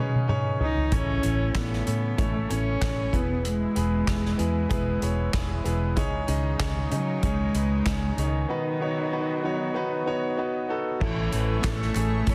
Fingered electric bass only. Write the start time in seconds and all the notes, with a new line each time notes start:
0.92 A1
1.24 A1
1.55 A1
1.87 A2
2.19 A1
2.50 A1
2.82 A1
3.13 E1
3.76 E1
4.07 E1
4.39 E2
4.71 E1
5.02 E1
5.34 E1
5.65 E1
5.97 C#2
6.28 C#2
6.60 C#2
6.92 C#3
7.23 C#2
7.54 C#2
7.86 C#2
8.17 C#2
11.01 A1
11.33 A1
11.64 A1
11.95 A1
12.27 A1